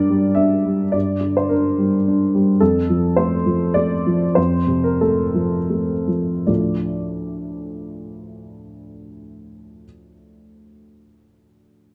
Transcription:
Already playing: G2 G3 D4 A#4 D5
0.10 G3
0.35 D4 E5
0.65 G3
0.92 G2 D5
1.21 D3
1.37 C5
1.49 D4 A#4
1.78 G3
2.08 D4
2.35 G3
2.60 F2 A4
2.89 F3
3.16 A3 C5
3.46 F3
3.74 A3 D5
4.07 F3
4.35 F2 C5
4.67 C3
4.84 A#4
5.01 A3 A4
5.34 F3
5.70 A3
6.08 F3
6.46 D2 A2 F3 A3 D4 F4 D5

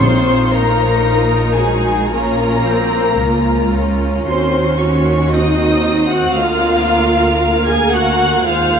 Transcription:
0.00 A#1 A#2 C4 D#4 F4 C5 C6
0.53 A#3 A#4 A#5
1.07 F4
1.56 G#3 F#4 G#4 G#5
2.10 A#3 C#4 F4 A#4 A#5
2.65 C4
3.18 C#2 A#3 F4
3.73 C#4
4.27 D#2 C4 F#4 C5 C6
4.78 C#4 C#5 C#6
5.29 C4 D#5 D#6
5.34 D#4
6.08 F#4 F#5
6.13 F#6
6.35 D2 A#3 F4 A#4 F5 F6
7.39 A#3
7.66 G#4 G#5 G#6
7.92 F#4 F#5 F#6
8.43 D#2 G#3 F4 C5 F5
8.49 F6

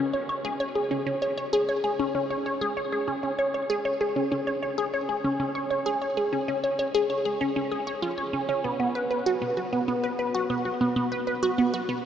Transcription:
0.13 C#5
0.29 C#5
0.45 G#4
0.60 C#5
0.75 G#4
0.91 C#4
1.07 C#4
1.22 C#5
1.38 C#5
1.53 G#4
1.69 C#5
1.84 G#4
1.99 C#4
2.15 C#4
2.30 C#5
2.46 C#5
2.61 G#4
2.77 C#5
2.92 G#4
3.08 C#4
3.23 C#4
3.39 C#5
3.54 C#5
3.70 G#4
3.85 C#5
4.01 G#4
4.16 C#4
4.32 C#4
4.47 C#5
4.63 C#5
4.78 G#4
4.94 C#5
5.09 G#4
5.24 C#4
5.40 C#4
5.55 C#5
5.70 C#5
5.86 G#4
6.02 C#5
6.17 G#4
6.33 C#4
6.48 C#4
6.64 C#5
6.79 C#5
6.95 G#4
7.10 C#5
7.25 G#4
7.41 C#4
7.56 C#4
7.71 G#4
7.87 C#5
8.02 F4
8.18 C#5
8.33 C#4
8.49 C#4
8.64 B3
8.80 B3
8.95 B4
9.11 B4
9.26 F#4
9.42 B3
9.57 F#4
9.73 B3
9.88 B3
10.04 B4
10.19 B4
10.35 F#4
10.50 B3
10.65 F#4
10.81 B3
10.96 B3
11.12 B4
11.27 B4
11.43 F#4
11.58 B3
11.74 F#4
11.89 B3

